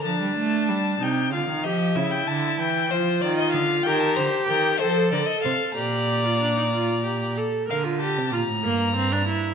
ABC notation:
X:1
M:6/8
L:1/16
Q:3/8=63
K:Gphr
V:1 name="Violin"
=a6 g2 f2 e2 | =e g =a2 g2 c2 d _e f2 | [K:Bb] g a b2 g2 c2 d e f2 | b8- b2 z2 |
f2 a2 b8 |]
V:2 name="Violin"
z12 | z12 | [K:Bb] B2 c2 B2 A2 B2 c2 | d8- d2 z2 |
z12 |]
V:3 name="Viola"
D6 E2 F2 G2 | =E6 F6 | [K:Bb] G6 A6 | G3 F D E F2 G2 A2 |
B F G2 F2 B,2 C D =E2 |]
V:4 name="Cello" clef=bass
F, G, =A,2 G,2 C,2 D, E, F,2 | ^C,2 D,2 =E,2 F,2 _E,2 D,2 | [K:Bb] E,2 D,2 E,2 F,2 D,2 C,2 | B,,8- B,,2 z2 |
D,3 C, B,, A,, G,,6 |]